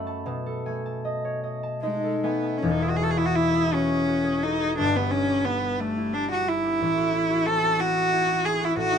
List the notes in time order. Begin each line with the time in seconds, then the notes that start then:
Already playing: F#2 A3 F#4 A4 E5 F#5 B5
0.07 A5
0.26 B2 A5
0.46 A4
0.66 A3 G#5
0.86 A5
1.05 D#5
1.25 C#5
1.44 D#5
1.63 A5
1.82 G#3 D#4 D#5
2.04 A4
2.23 A3 B3 G#5
2.43 A5
2.58 C#4
2.62 E1 E2
2.72 D#4
2.82 E4 G#4
2.90 F#4
2.97 G#4
3.01 F#4 A4
3.11 G#4
3.18 E4 G#4
3.26 F#4
3.36 E4
3.54 G#4
3.72 C#4 F#4
3.90 G#4
4.07 F#4
4.24 G#4
4.43 D#4 A4
4.61 G#4
4.78 G1 G2 D4
4.95 B3 G4
5.12 C#4 D4
5.29 G4
5.45 B3 D4
5.63 G4
5.80 A3 D4
5.97 E4
6.14 D4 G4
6.31 D4 F#4
6.48 E4
6.64 G4
6.80 A1 A2
6.97 F#4
7.13 E4
7.30 F#4
7.47 C4 A4
7.63 F#4
7.80 E4 F#4
7.97 F#4
8.13 E4
8.27 F#4
8.45 G#4
8.60 F#4
8.65 E4
8.75 A1 A2 F#4
8.91 D#4